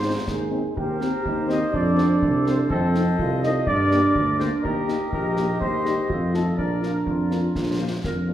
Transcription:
Already playing: tuba G#2, woodwind section D#4 C5, trumpet section C5
0.04 french horn section C4 D#4
0.28 tuba D#2, euphonium G#4, concert bass drum, snare
0.51 french horn section C4 D#4
0.76 tuba D#2, euphonium G4, woodwind section G4 C5, trumpet section A#4, concert bass drum
1.00 french horn section C4 G4, snare
1.25 tuba D#2, euphonium D#4, concert bass drum
1.48 french horn section C4 G4, trumpet section D#5, snare
1.72 tuba F2, euphonium D4, woodwind section A4, trumpet section D5, concert bass drum
1.97 french horn section C4 A4, snare
2.22 tuba C2, concert bass drum
2.45 french horn section C4 A4, trumpet section C5, snare
2.69 tuba F2, euphonium C4, trumpet section A4, woodwind section C5 D#5, concert bass drum
2.94 french horn section C4 D#4 A4, snare
3.18 tuba C2, euphonium F4, concert bass drum
3.42 french horn section C4 D#4 A4, trumpet section D#5, snare
3.67 tuba G2, euphonium D4, woodwind section A#4 D5, trumpet section D5, concert bass drum
3.90 french horn section A#3 D4 G4, snare
4.15 tuba D2, concert bass drum
4.39 french horn section A#3 D4 G4, trumpet section C5, snare
4.62 tuba D#2, woodwind section G4 D#5, euphonium G4, trumpet section A#4, concert bass drum
4.88 french horn section A#3 D#4 G4, snare
5.11 tuba A#1, trumpet section A#4, concert bass drum
5.36 french horn section A#3 D#4 G4, snare
5.59 tuba D#2, trumpet section C5, concert bass drum
5.84 french horn section G3 D#4 G4, snare
6.08 tuba F2, euphonium F4, woodwind section A4, concert bass drum
6.33 french horn section A3 D#4 F4, trumpet section A4, snare
6.57 tuba A#1, euphonium D4, trumpet section A#4, woodwind section A#4 D5, concert bass drum
6.81 french horn section A#3 D4 F4, snare
7.06 tuba F2, woodwind section F4, concert bass drum
7.30 french horn section A#3 D4 F4, snare
7.55 tuba A#1, concert bass drum, snare
7.79 french horn section A#3 D4 F4, woodwind section C5
8.03 tuba F2, woodwind section A#4, concert bass drum, snare
8.27 french horn section A#3 D4 F4

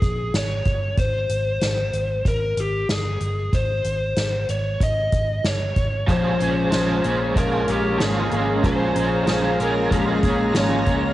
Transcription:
Already playing: electric slide guitar G#4
0.02 fingered electric bass A#1, kick, closed hi-hat
0.34 fingered electric bass G#1, electric slide guitar C#5, snare, closed hi-hat
0.65 fingered electric bass G1, kick, closed hi-hat
0.97 fingered electric bass G#1, electric slide guitar C5, kick, closed hi-hat
1.29 fingered electric bass G#1, closed hi-hat
1.61 fingered electric bass G#1, snare, closed hi-hat
1.93 fingered electric bass G#1, closed hi-hat
2.25 fingered electric bass G#1, electric slide guitar A#4, kick, closed hi-hat
2.57 fingered electric bass G#1, electric slide guitar G4, closed hi-hat
2.89 fingered electric bass G1, electric slide guitar G#4, snare, closed hi-hat
3.20 fingered electric bass G1, closed hi-hat
3.53 fingered electric bass G#1, electric slide guitar C5, kick, closed hi-hat
3.84 fingered electric bass G#1, closed hi-hat
4.16 fingered electric bass G#1, snare, closed hi-hat
4.49 fingered electric bass G#1, electric slide guitar C#5, closed hi-hat
4.80 fingered electric bass G#1, electric slide guitar D#5, kick, closed hi-hat
5.12 fingered electric bass G#1, kick, closed hi-hat
5.44 fingered electric bass G1, electric slide guitar C#5, snare, closed hi-hat
5.76 fingered electric bass G#1, kick, closed hi-hat
6.07 fingered electric bass A#1, overdriven electric guitar A#2 F3 G#3 C#4, ambient pad G#3 C#4 F5 A#5, electric slide guitar C5, kick, closed hi-hat
6.11 overdriven electric guitar G#4
6.38 fingered electric bass A#1, overdriven electric guitar C#4 G#4, closed hi-hat
6.44 overdriven electric guitar G#3
6.70 fingered electric bass A#1, overdriven electric guitar F3 G#3, snare, closed hi-hat
6.74 overdriven electric guitar C#4 G#4
7.02 fingered electric bass A#1, clean electric guitar A#3, overdriven electric guitar C#4 G#4, closed hi-hat
7.08 overdriven electric guitar G#3
7.35 fingered electric bass A#1, overdriven electric guitar A#2 F3 G#3 C#4, kick, closed hi-hat
7.39 overdriven electric guitar G#4, electric slide guitar A#4
7.68 fingered electric bass A#1, clean electric guitar A#3, overdriven electric guitar C#4, electric slide guitar G4, closed hi-hat
7.72 overdriven electric guitar G#3
7.98 fingered electric bass G#1, overdriven electric guitar F3 G#3, snare, closed hi-hat
8.02 overdriven electric guitar C#4 G#4, electric slide guitar G#4
8.30 fingered electric bass G#1, clean electric guitar A#3, overdriven electric guitar C#4 G#4, closed hi-hat
8.36 overdriven electric guitar G#3
8.62 fingered electric bass A#1, overdriven electric guitar A#2 F3 G#3 C#4, electric slide guitar C5, kick, closed hi-hat
8.66 overdriven electric guitar G#4
8.94 fingered electric bass A#1, overdriven electric guitar C#4 G#4, closed hi-hat
9.00 overdriven electric guitar G#3
9.26 fingered electric bass A#1, overdriven electric guitar F3 G#3, snare, closed hi-hat
9.30 overdriven electric guitar C#4 G#4
9.58 fingered electric bass A#1, clean electric guitar A#3, overdriven electric guitar C#4 G#4, electric slide guitar A#4, closed hi-hat
9.63 overdriven electric guitar G#3
9.90 fingered electric bass A#1, overdriven electric guitar A#2 F3 G#3 C#4, kick, closed hi-hat
9.94 electric slide guitar G#4, overdriven electric guitar G#4
9.99 electric slide guitar G4
10.08 electric slide guitar G#4
10.21 fingered electric bass A#1, clean electric guitar A#3, overdriven electric guitar C#4 G#4, kick, closed hi-hat
10.27 overdriven electric guitar G#3
10.53 fingered electric bass G#1, overdriven electric guitar F3 G#3, snare, closed hi-hat
10.57 overdriven electric guitar C#4 G#4, electric slide guitar C#5
10.85 fingered electric bass C#2, clean electric guitar A#3, overdriven electric guitar C#4 G#4, kick, closed hi-hat
10.91 overdriven electric guitar G#3

